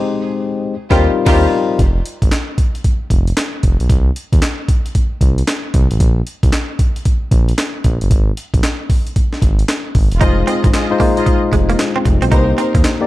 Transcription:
Already playing: G#3 C4 D#4 G4 C5
0.90 D#2 G3 C4 D#4 F4 G4 A#4 C5, kick, snare
1.26 D#2 G3 C4 D#4 F4 G4 A#4 C5, kick, snare, crash
1.79 F1, kick, closed hi-hat
2.06 closed hi-hat
2.22 G#1, kick, closed hi-hat
2.32 snare, clap, closed hi-hat
2.58 kick, closed hi-hat
2.75 closed hi-hat
2.84 kick, closed hi-hat
3.10 F1, kick, closed hi-hat
3.27 closed hi-hat
3.37 snare, clap, closed hi-hat
3.63 F1, kick, closed hi-hat
3.80 B1, closed hi-hat
3.90 C2, kick, closed hi-hat
4.16 closed hi-hat
4.33 D#2, kick, closed hi-hat
4.42 snare, clap, closed hi-hat
4.68 kick, closed hi-hat
4.86 closed hi-hat
4.95 kick, closed hi-hat
5.21 C2, kick, closed hi-hat
5.38 closed hi-hat
5.48 snare, clap, closed hi-hat
5.74 C2, kick, closed hi-hat
5.91 A1, closed hi-hat
6.00 A#1, kick, closed hi-hat
6.27 closed hi-hat
6.43 C2, kick, closed hi-hat
6.53 snare, clap, closed hi-hat
6.79 kick, closed hi-hat
6.96 closed hi-hat
7.05 kick, closed hi-hat
7.31 A#1, kick, closed hi-hat
7.49 closed hi-hat
7.58 snare, clap, closed hi-hat
7.84 A#1, kick, closed hi-hat
8.01 G1, closed hi-hat
8.11 G#1, kick, closed hi-hat
8.37 closed hi-hat
8.54 A#1, kick, closed hi-hat
8.63 snare, clap, closed hi-hat
8.90 kick, open hi-hat
9.07 closed hi-hat
9.16 kick, closed hi-hat
9.33 snare
9.42 G#1, kick, closed hi-hat
9.59 closed hi-hat
9.69 snare, clap, closed hi-hat
9.95 G#1, kick, open hi-hat
10.12 E1, closed hi-hat
10.21 F1 G#3 D#4 F4 G#4 C5 D#5, kick, closed hi-hat
10.47 C4 F4 G#4 D#5, closed hi-hat
10.64 G#1, muted clean electric guitar stroke, kick, closed hi-hat
10.73 F4 G#4 D#5, snare, clap, closed hi-hat
10.90 G#3 D#4 F4 C5
11.00 G#3 A#3 D#4 F4 C5, kick, open hi-hat
11.17 F4 G#4 D#5, closed hi-hat
11.26 muted clean electric guitar stroke, kick, closed hi-hat
11.52 F1 G#3, kick, closed hi-hat
11.70 A#3, closed hi-hat
11.79 snare, clap, closed hi-hat
11.96 C4
12.05 F1, muted clean electric guitar stroke, kick, closed hi-hat
12.22 B1 C4, closed hi-hat
12.31 C2 A#3 D#4 G4 A#4 B4 C5, kick, closed hi-hat
12.39 C5
12.58 C4 D#4 A#4 C5, closed hi-hat
12.75 D#2, muted clean electric guitar stroke, kick, closed hi-hat
12.84 snare, clap, closed hi-hat
13.01 A#3 D#4 G4 D5

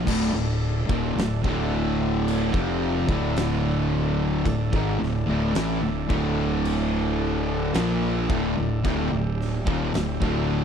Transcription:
0.05 D1 D2 A2 D4 A4 E5, kick, crash
0.33 D1 D2 A2
0.88 D#1 D#2 A#2, kick
1.16 D1 D2 A2, snare, crash
1.44 D1 D2 A2 D3, kick
2.28 crash
2.52 F1 F2 C3 F3, kick
3.08 D1 D2 A2 D3, kick
3.36 snare, crash
4.44 D1 D2 A2, kick, crash
4.73 G#1 G#2 D#3, kick
5.00 D1 D2 A2, snare
5.28 D1 D2 A2
5.54 A1 A2 E3, snare, crash
5.83 D1 D2 A2
6.09 D1 D2 A2 D3, kick
6.65 crash
7.74 A#1 A#2 F3 A#3, snare, crash
8.29 D1 D2 A2, kick
8.57 D1 D2 A2
8.84 D1 D2 A2 G4, kick, crash
9.11 D1 D2 A2
9.41 snare
9.67 D#1 D#2 A#2, kick
9.94 D1 D2 A2, snare, crash
10.21 D1 D2 A2 D3, kick

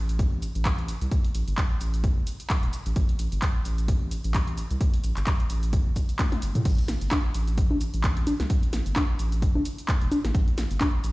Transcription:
Already playing: A1
0.09 closed hi-hat, shaker
0.19 kick, closed hi-hat, shaker
0.42 open hi-hat, shaker
0.55 A1, closed hi-hat, shaker
0.65 kick, clap, closed hi-hat, shaker
0.78 closed hi-hat
0.88 open hi-hat, shaker
1.01 C2, closed hi-hat, shaker
1.11 kick, closed hi-hat, shaker
1.25 open hi-hat
1.35 A1, open hi-hat, shaker
1.47 G1, closed hi-hat, shaker
1.58 kick, clap, closed hi-hat, shaker
1.81 A1, open hi-hat, shaker
1.94 closed hi-hat, shaker
2.04 kick, closed hi-hat, shaker
2.17 G1
2.27 open hi-hat, shaker
2.40 closed hi-hat, shaker
2.50 kick, clap, closed hi-hat, shaker
2.63 E1, closed hi-hat
2.73 open hi-hat, shaker
2.86 A1, closed hi-hat, shaker
2.96 A1, kick, closed hi-hat, shaker
3.09 closed hi-hat
3.19 A1, open hi-hat, shaker
3.32 G1, closed hi-hat, shaker
3.42 kick, clap, closed hi-hat, shaker
3.65 A1, open hi-hat, shaker
3.78 closed hi-hat, shaker
3.88 kick, closed hi-hat, shaker
4.11 open hi-hat, shaker
4.24 A1, closed hi-hat, shaker
4.34 kick, clap, closed hi-hat, shaker
4.47 closed hi-hat
4.58 open hi-hat, shaker
4.71 C2, closed hi-hat, shaker
4.81 kick, closed hi-hat, shaker
4.94 open hi-hat
5.04 A1, open hi-hat, shaker
5.17 G1, clap, closed hi-hat, shaker
5.27 kick, clap, closed hi-hat, shaker
5.40 closed hi-hat
5.50 A1, open hi-hat, shaker
5.63 closed hi-hat, shaker
5.73 kick, closed hi-hat, shaker
5.86 G1
5.96 kick, open hi-hat, shaker
6.09 closed hi-hat, shaker
6.19 kick, clap, closed hi-hat, high tom, shaker
6.32 A1, closed hi-hat, high tom
6.42 G1, open hi-hat, shaker
6.55 A2, closed hi-hat, mid tom, shaker
6.65 A1, kick, closed hi-hat, crash, shaker
6.78 closed hi-hat
6.88 A1, snare, open hi-hat, shaker
7.01 G1, closed hi-hat, shaker
7.11 kick, clap, closed hi-hat, high conga, shaker
7.34 A1, open hi-hat, shaker
7.47 closed hi-hat, shaker
7.58 kick, closed hi-hat, shaker
7.71 high conga
7.81 open hi-hat, shaker
7.94 A1, closed hi-hat, shaker
8.04 kick, clap, closed hi-hat, shaker
8.17 closed hi-hat
8.27 open hi-hat, high conga, shaker
8.40 C2, snare, closed hi-hat, shaker
8.50 kick, closed hi-hat, shaker
8.63 open hi-hat
8.73 A1, snare, open hi-hat, shaker
8.86 G1, closed hi-hat, shaker
8.96 kick, clap, closed hi-hat, high conga, shaker
9.19 A1, open hi-hat, shaker
9.32 closed hi-hat, shaker
9.42 kick, closed hi-hat, shaker
9.55 G1, high conga
9.65 open hi-hat, shaker
9.78 closed hi-hat, shaker
9.88 kick, clap, closed hi-hat, shaker
10.01 E1, closed hi-hat
10.12 open hi-hat, high conga, shaker
10.24 A1, snare, closed hi-hat, shaker
10.35 A1, kick, closed hi-hat, shaker
10.48 closed hi-hat
10.58 A1, snare, open hi-hat, shaker
10.71 G1, closed hi-hat, shaker
10.81 kick, clap, closed hi-hat, high conga, shaker
11.04 A1, open hi-hat, shaker

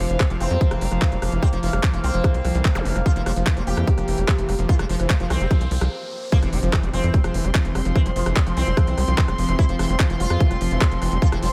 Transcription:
Already playing: F3 A#3 F5
0.00 F3
0.10 F1 E3, closed hi-hat
0.20 C3 G#3, kick, cross-stick, clap, closed hi-hat
0.30 F1 C3 F3, closed hi-hat
0.40 F1 E3 C4, cross-stick, open hi-hat
0.51 F2 G#3, closed hi-hat
0.61 F3, kick, closed hi-hat
0.71 F1 E3, cross-stick, closed hi-hat
0.81 F1 G#3, open hi-hat
0.91 F1 F3, cross-stick, closed hi-hat
1.02 E3, kick, clap, closed hi-hat
1.12 F1 G#3, closed hi-hat
1.22 F1 F3, cross-stick, open hi-hat
1.32 F1 E3, closed hi-hat
1.42 G#3 C4, kick, cross-stick, closed hi-hat
1.53 F1 F3, closed hi-hat
1.63 F1 E3 F3, open hi-hat
1.73 F1 G#3, cross-stick, closed hi-hat
1.83 F3, kick, clap, closed hi-hat
1.93 F1 E3 F3, cross-stick, closed hi-hat
2.04 C2 G#3 C4, open hi-hat
2.14 F1 F3, closed hi-hat
2.24 E3, kick, cross-stick, closed hi-hat
2.34 C2 G#3, closed hi-hat
2.45 C2 F3, cross-stick, open hi-hat
2.55 C2 E3, closed hi-hat
2.65 G#3, kick, clap, closed hi-hat
2.75 F1 F3, cross-stick, closed hi-hat, zap
2.85 F1 E3, open hi-hat
2.96 F1 G#3, cross-stick, closed hi-hat
3.06 F3 F4, kick, closed hi-hat, riser
3.16 F1 E3 F3, closed hi-hat
3.26 F1 F3 G#3, cross-stick, open hi-hat
3.36 F1 F3, closed hi-hat
3.47 E3 F3, kick, cross-stick, clap, closed hi-hat
3.57 F1 F3 G#3, closed hi-hat
3.67 F1 F3 G4, open hi-hat
3.77 F2 E3, cross-stick, closed hi-hat
3.87 G#3, kick, closed hi-hat
3.98 F1 F3, cross-stick, closed hi-hat
4.08 F1 E3, open hi-hat
4.18 F1 G#3, closed hi-hat
4.28 F3, kick, cross-stick, clap, closed hi-hat
4.38 F1 E3, closed hi-hat
4.49 F1 G#3, cross-stick, open hi-hat
4.59 F1 F3, closed hi-hat
4.69 E3 F4, kick, closed hi-hat
4.79 F1 F3 G#3, cross-stick, closed hi-hat
4.89 F1 F3, open hi-hat
5.00 F1 E3, cross-stick, closed hi-hat
5.10 F3 G#3, kick, clap, closed hi-hat
5.20 F1 F3, closed hi-hat
5.30 C2 E3 C4, cross-stick, open hi-hat
5.40 F1 G#3, closed hi-hat
5.51 F3, kick, cross-stick, closed hi-hat
5.61 C2 E3, closed hi-hat
5.71 C2 F3, open hi-hat
5.81 C2 F3, cross-stick, closed hi-hat
6.32 F3 A#3 C4, kick, closed hi-hat, impact
6.42 F1 C3 E3, cross-stick, closed hi-hat
6.53 F1 C3 F3 G#3, open hi-hat
6.63 F1 F3, closed hi-hat
6.73 E3, kick, cross-stick, clap, closed hi-hat
6.83 F1 C3 G#3, closed hi-hat
6.93 F1 F3 C4, cross-stick, open hi-hat
7.04 F2 E3, closed hi-hat
7.14 G#3 C6, kick, closed hi-hat
7.24 F1 F3, cross-stick, closed hi-hat
7.34 F1 E3, open hi-hat
7.45 F1 G#3, cross-stick, closed hi-hat
7.55 F3, kick, clap, closed hi-hat
7.65 F1 E3, closed hi-hat
7.75 F1 G#3, cross-stick, open hi-hat
7.85 F1 F3, closed hi-hat
7.96 E3 C4, kick, cross-stick, closed hi-hat
8.06 F1 F3 G#3, closed hi-hat
8.16 F1 F3, open hi-hat
8.26 F1 E3, cross-stick, closed hi-hat
8.36 F3 G#3, kick, clap, closed hi-hat
8.47 F1 F3, cross-stick, closed hi-hat
8.57 C2 E3 C4, open hi-hat
8.67 F1 G#3, closed hi-hat
8.77 F3, kick, cross-stick, closed hi-hat
8.87 C2 E3, closed hi-hat
8.98 C2 G#3, cross-stick, open hi-hat
9.08 C2 F3, closed hi-hat
9.18 E3, kick, clap, closed hi-hat
9.28 F1 G#3, cross-stick, closed hi-hat
9.38 F1 F3, open hi-hat
9.49 F1 E3, cross-stick, closed hi-hat
9.59 G#3 E4, kick, closed hi-hat
9.69 F1 F3, closed hi-hat
9.79 F1 E3 F3, cross-stick, open hi-hat
9.89 F1 G#3, closed hi-hat
10.00 F3, kick, cross-stick, clap, closed hi-hat
10.10 F1 E3 F3, closed hi-hat
10.20 F1 G#3 F4, open hi-hat
10.30 F2 F3, cross-stick, closed hi-hat
10.40 E3, kick, closed hi-hat
10.51 F1 G#3, cross-stick, closed hi-hat
10.61 F1 F3, open hi-hat
10.71 F1 E3, closed hi-hat
10.81 G#3, kick, cross-stick, clap, closed hi-hat
10.91 F1 F3, closed hi-hat
11.02 F1 E3, cross-stick, open hi-hat
11.12 F1 G#3, closed hi-hat
11.22 F3 F4, kick, closed hi-hat
11.32 F1 E3 F3, cross-stick, closed hi-hat
11.43 F1 F3 G#3, open hi-hat

